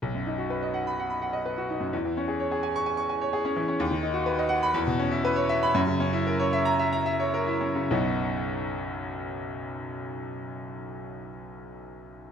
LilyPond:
\new Staff \with { instrumentName = "Grand piano" } { \time 4/4 \key b \major \tempo 4 = 119 << { r4. r16 b''8 r4. r16 | r4. r16 cis'''8 r4. r16 | r4. r16 b''16 r4. r16 b''16 | r4. r16 ais''8 r4. r16 |
<b,, fis, fis b dis' fis'>1~ | <b,, fis, fis b dis' fis'>1 | } \\ { b,,16 fis,16 dis'16 fis'16 b'16 dis''16 fis''8 fis''16 b''16 fis''16 dis''16 b'16 fis'16 dis'16 fis,16 | e,16 e16 cis'16 gis'16 cis''16 gis'16 gis''8 gis''16 cis'''16 gis''16 cis''16 gis'16 cis'16 e16 cis'16 | dis,16 dis16 dis'16 fis'16 b'16 dis''16 fis''8 e,16 b,16 cis'16 e'16 b'16 cis''16 e''8 | fis,16 cis16 cis'16 e'16 ais'16 cis''16 e''8 e''16 ais''16 e''16 cis''16 ais'16 e'16 cis'16 cis16 |
r1 | r1 | } >> }